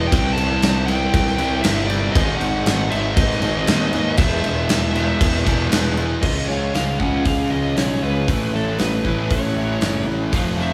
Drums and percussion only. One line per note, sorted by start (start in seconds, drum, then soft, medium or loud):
0.12 kick loud
0.12 crash loud
0.37 crash medium
0.62 snare loud
0.62 crash medium
0.88 crash medium
1.14 kick loud
1.14 crash medium
1.27 snare soft
1.38 crash medium
1.64 snare loud
1.64 crash medium
1.90 crash medium
2.15 kick loud
2.15 crash medium
2.41 crash medium
2.66 snare loud
2.66 crash medium
2.91 crash medium
3.17 kick loud
3.17 crash medium
3.31 snare soft
3.42 crash medium
3.67 snare loud
3.67 crash medium
3.93 crash medium
4.17 kick loud
4.17 crash loud
4.44 crash medium
4.69 snare loud
4.69 crash loud
4.95 crash medium
5.21 kick loud
5.21 crash medium
5.36 snare soft
5.47 kick medium
5.47 crash medium
5.72 snare loud
5.72 crash medium
5.97 crash medium
6.22 kick loud
6.22 crash loud
6.50 snare soft
6.74 snare loud
6.74 open hi-hat soft
7.00 kick medium
7.25 kick loud
7.25 open hi-hat medium
7.77 snare loud
7.77 open hi-hat medium
8.28 kick loud
8.28 open hi-hat medium
8.55 snare soft
8.79 snare loud
8.79 open hi-hat medium
9.05 kick medium
9.30 kick loud
9.30 open hi-hat medium
9.81 snare loud
9.81 open hi-hat medium
10.33 kick loud
10.33 open hi-hat medium
10.60 snare soft